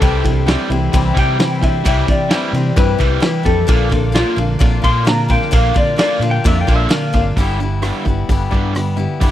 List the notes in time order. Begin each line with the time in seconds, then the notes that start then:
Already playing: A4 E5
0.00 C2 C3 E3 G3 C4 E4 G4 C6, kick, ride
0.23 C3 E3 G3 C4 E4, kick, ride
0.46 C3 E3 G3 C4 G4, snare, ride
0.51 E4
0.69 C2 C3 E3 C4 E4, ride
0.73 G3
0.92 C2 C3 E3 G3 C4 E4, kick, ride
1.14 C3 E3 G3 E4, kick, ride
1.18 G3 C4 G5
1.38 C3 E3 G3 C4, snare, ride
1.42 E4
1.62 C3 E3 C4 E4 E5, kick, ride
1.66 G3
1.84 C2 C3 E3 G3 C4 E4 E5 D6, kick, ride
2.07 C3 E3 C4 E4 D5, kick, ride
2.12 G3
2.29 C3 E3 G3, snare, ride
2.34 C4 E4
2.53 C3 E3 C4 E4, ride
2.57 G3
2.76 G2 C3 E3 G3 C4 E4 B4, kick, ride
2.98 C2 C3 E3 G3 C4 E4, kick, ride
3.20 C3 E3 G3 C4 E4, snare, ride
3.43 F2 C3 E3 G3 C4 E4 A4, kick, ride
3.66 A#1 A#2 D3 A#3 D4 F4 F5, kick, ride
3.90 A#2 D3 A#3 D4 F4, kick, ride
4.12 A#2 D3 A#3 D4 F4, snare, ride
4.36 A#1 A#2 D3 A#3 D4 F4, ride
4.59 A#1 A#2 D3 A#3 D4 F4, kick, ride
4.82 A#2 D3 A#3 D4 F4 C6, kick, ride
5.05 A#2 D3 A#3 D4 F4 A#5, snare, ride
5.28 A#2 D3 A#3 D4 F4 G5, kick, ride
5.42 snare
5.51 A#1 A#2 D3 A#3 D4 F4 F5, kick, ride
5.74 A#2 D3 A#3 D4 F4 D5, kick, ride
5.96 A#2 D3 A#3 D4 F4 D5, snare, ride
6.20 A#2 D3 D4 F4, ride
6.24 A#3
6.31 G5
6.44 F2 A#2 D3 A#3 D4 F4 E5, kick, ride
6.61 G5
6.67 A#1 A#2 D3 A#3 D4 F4, kick, ride
6.76 E5
6.89 A#2 D3 A#3 D4 F4 F5, snare, ride
7.13 G1 A#2 D3 A#3 D4 F4, kick, ride
7.37 G1 G2 D3 E3 G3 B3 E4, kick, open hi-hat
7.60 G2 D3 E3 G3 B3 E4
7.82 G2 D3 E3 G3 B3 E4, cross-stick, open hi-hat
8.05 G1 G2 D3 E3 G3 B3 E4, kick
8.29 G1 G2 D3 E3 G3 B3 E4, kick, open hi-hat
8.51 G2 D3 E3 G3 B3 E4, kick
8.74 G2 D3 E3 G3 B3 E4, cross-stick, open hi-hat
8.97 G2 D3 E3 G3 B3 E4
9.20 G1 G2 D3 E3 G3 B3 E4, kick, open hi-hat